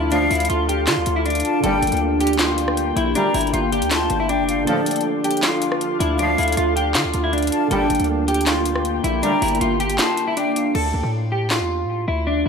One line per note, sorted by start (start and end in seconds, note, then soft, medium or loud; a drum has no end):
0.00 0.29 D2 loud
0.00 1.58 D3 medium
0.00 1.59 F3 medium
0.00 1.60 A3 medium
0.00 1.62 D4 medium
0.00 4.63 D4 medium
0.00 0.11 E4 medium
0.00 1.61 F4 medium
0.00 1.61 A4 medium
0.00 1.61 F5 medium
0.12 0.24 D2 loud
0.12 0.24 A2 loud
0.12 0.24 F3 loud
0.12 0.30 D4 loud
0.12 0.47 F5 loud
0.12 closed hi-hat medium
0.31 0.49 D2 loud
0.31 0.49 E4 medium
0.31 closed hi-hat soft
0.31 open hi-hat medium
0.35 closed hi-hat medium
0.40 closed hi-hat medium
0.45 closed hi-hat medium
0.50 0.89 D2 loud
0.50 0.68 F4 medium
0.50 closed hi-hat medium
0.69 0.87 G4 medium
0.69 closed hi-hat medium
0.87 0.99 D3 loud
0.87 1.14 F4 medium
0.87 snare loud
0.87 clap medium
0.87 closed hi-hat medium
0.97 1.06 D2 loud
1.06 1.43 D2 loud
1.06 closed hi-hat medium
1.16 1.25 E4 medium
1.26 1.61 D4 medium
1.26 closed hi-hat soft
1.30 closed hi-hat medium
1.35 closed hi-hat medium
1.40 closed hi-hat medium
1.45 1.63 A5 medium
1.45 closed hi-hat medium
1.59 4.61 D3 medium
1.59 4.63 G3 medium
1.59 1.99 G5 loud
1.63 1.82 G1 loud
1.63 1.76 D2 medium
1.63 1.76 A#2 loud
1.63 1.76 G3 loud
1.63 4.64 A#3 medium
1.63 4.64 G4 medium
1.63 1.99 A4 loud
1.63 4.64 G5 medium
1.63 closed hi-hat medium
1.68 4.65 D4 medium
1.83 1.92 G1 loud
1.83 closed hi-hat medium
1.87 closed hi-hat medium
1.92 2.92 D2 loud
1.92 closed hi-hat medium
1.97 closed hi-hat soft
2.20 2.38 G4 medium
2.20 closed hi-hat medium
2.27 closed hi-hat medium
2.33 closed hi-hat medium
2.39 2.93 F4 medium
2.39 snare loud
2.39 clap loud
2.39 closed hi-hat medium
2.58 closed hi-hat medium
2.68 cross-stick loud
2.77 closed hi-hat medium
2.96 3.15 A#1 loud
2.96 3.14 E4 medium
2.96 closed hi-hat medium
3.15 3.28 D2 loud
3.15 3.27 A#2 loud
3.15 3.27 G3 loud
3.15 3.33 D4 loud
3.15 3.51 A#5 loud
3.15 closed hi-hat medium
3.34 3.53 G1 loud
3.34 3.52 E4 medium
3.34 closed hi-hat medium
3.34 open hi-hat medium
3.41 closed hi-hat medium
3.47 closed hi-hat soft
3.53 3.83 G1 loud
3.53 3.71 F4 medium
3.53 closed hi-hat medium
3.72 3.90 G4 medium
3.72 closed hi-hat medium
3.82 4.09 D2 loud
3.82 closed hi-hat medium
3.91 4.18 F4 medium
3.91 4.27 A5 medium
3.91 snare loud
3.91 clap loud
3.91 closed hi-hat medium
4.10 4.40 G1 loud
4.10 closed hi-hat medium
4.20 4.29 E4 medium
4.29 4.65 D4 medium
4.29 4.47 G5 medium
4.29 closed hi-hat medium
4.39 4.66 F1 loud
4.48 4.66 F5 medium
4.48 closed hi-hat medium
4.63 4.79 D2 loud
4.63 4.79 A2 loud
4.63 7.65 D3 medium
4.63 7.66 F3 medium
4.63 5.03 A4 loud
4.63 5.03 D5 loud
4.67 4.79 F3 loud
4.67 7.68 A3 medium
4.67 10.71 D4 medium
4.67 7.68 F4 medium
4.67 7.68 A4 medium
4.67 7.68 F5 loud
4.67 closed hi-hat medium
4.71 7.69 D4 medium
4.86 closed hi-hat medium
4.91 closed hi-hat medium
4.96 closed hi-hat medium
5.01 closed hi-hat soft
5.24 5.42 G4 medium
5.24 closed hi-hat medium
5.31 closed hi-hat medium
5.37 closed hi-hat medium
5.43 5.97 F4 medium
5.43 snare loud
5.43 clap loud
5.43 closed hi-hat medium
5.62 closed hi-hat medium
5.72 cross-stick loud
5.81 closed hi-hat medium
6.00 6.37 D2 loud
6.00 6.18 E4 medium
6.00 closed hi-hat medium
6.19 6.31 D2 medium
6.19 6.31 A2 loud
6.19 6.31 F3 loud
6.19 6.37 D4 loud
6.19 6.55 F5 loud
6.19 closed hi-hat medium
6.38 6.56 D2 loud
6.38 6.56 E4 medium
6.38 closed hi-hat soft
6.38 open hi-hat medium
6.43 closed hi-hat medium
6.48 closed hi-hat medium
6.52 closed hi-hat medium
6.57 6.97 D2 loud
6.57 6.75 F4 medium
6.57 closed hi-hat medium
6.76 6.94 G4 medium
6.76 closed hi-hat medium
6.95 7.06 D3 loud
6.95 7.22 F4 medium
6.95 snare loud
6.95 clap loud
6.95 closed hi-hat medium
7.05 7.14 D2 loud
7.14 7.51 D2 loud
7.14 closed hi-hat medium
7.24 7.33 E4 medium
7.33 7.69 D4 medium
7.33 closed hi-hat soft
7.38 closed hi-hat medium
7.43 closed hi-hat medium
7.47 closed hi-hat medium
7.52 7.70 A5 medium
7.52 closed hi-hat medium
7.67 10.69 D3 medium
7.67 10.70 G3 medium
7.67 8.07 A4 loud
7.67 8.07 G5 loud
7.67 closed hi-hat medium
7.71 7.89 G1 loud
7.71 7.83 D2 medium
7.71 7.83 A#2 loud
7.71 7.83 G3 loud
7.71 10.72 A#3 medium
7.71 10.72 G4 medium
7.71 10.72 G5 medium
7.75 10.73 D4 medium
7.90 7.99 G1 loud
7.90 closed hi-hat medium
7.95 closed hi-hat medium
8.00 9.00 D2 loud
8.00 closed hi-hat medium
8.04 closed hi-hat soft
8.28 8.46 G4 medium
8.28 closed hi-hat medium
8.34 closed hi-hat medium
8.41 closed hi-hat medium
8.46 9.01 F4 medium
8.46 snare loud
8.46 clap loud
8.46 closed hi-hat medium
8.65 closed hi-hat medium
8.76 cross-stick loud
8.85 closed hi-hat medium
9.04 9.22 A#1 loud
9.04 9.22 E4 medium
9.04 closed hi-hat medium
9.23 9.35 D2 loud
9.23 9.35 A#2 loud
9.23 9.35 G3 loud
9.23 9.41 D4 loud
9.23 9.59 A#5 loud
9.23 closed hi-hat medium
9.42 9.60 G1 loud
9.42 9.60 E4 medium
9.42 closed hi-hat medium
9.42 open hi-hat medium
9.48 closed hi-hat medium
9.55 closed hi-hat soft
9.61 9.99 G1 loud
9.61 9.79 F4 medium
9.61 closed hi-hat medium
9.80 9.98 G4 medium
9.80 closed hi-hat medium
9.90 closed hi-hat medium
9.98 10.26 F4 medium
9.98 10.35 A5 medium
9.98 snare loud
9.98 clap loud
9.98 closed hi-hat medium
10.17 closed hi-hat medium
10.27 10.36 E4 medium
10.37 10.73 D4 medium
10.37 10.55 G5 medium
10.37 closed hi-hat medium
10.56 10.74 F5 medium
10.56 closed hi-hat medium
10.75 10.93 D2 loud
10.75 11.11 A4 medium
10.75 crash medium
10.94 11.03 D2 loud
11.03 11.62 A2 loud
11.32 11.50 G4 medium
11.50 12.04 F4 medium
11.50 snare loud
11.50 clap loud
11.60 11.86 E2 loud
11.84 12.07 A2 loud
12.08 12.44 D2 loud
12.08 12.26 E4 medium
12.27 12.45 D4 loud